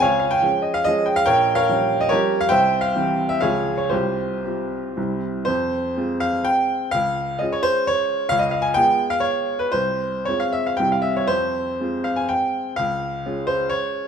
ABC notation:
X:1
M:3/4
L:1/16
Q:1/4=125
K:Fm
V:1 name="Grand piano"
[dfa]2 f g3 e f e2 g f | [Bdg]3 [Bdf]4 e [GBd]3 f | [c=eg]3 f4 e [Adf]3 d | [FGc]8- [FGc]2 z2 |
c6 f2 g4 | f4 e d c2 d4 | f e f a g3 f d3 _c | c4 d f =e f g f e d |
c6 f a g4 | f6 c2 d4 |]
V:2 name="Grand piano" clef=bass
D,,4 [F,A,D]4 [F,A,D]4 | B,,,4 [F,G,D]4 [F,G,D]4 | C,,4 [=E,G,C]4 [D,,F,A,F]4 | C,,4 [G,CF]4 [C,,G,C=E]4 |
F,,4 [A,CF]8 | D,,4 [A,DF]8 | D,,4 [A,_CF]8 | C,,4 [A,CF]4 [C,,G,C=E]4 |
F,,4 [A,CF]8 | D,,4 [A,DF]8 |]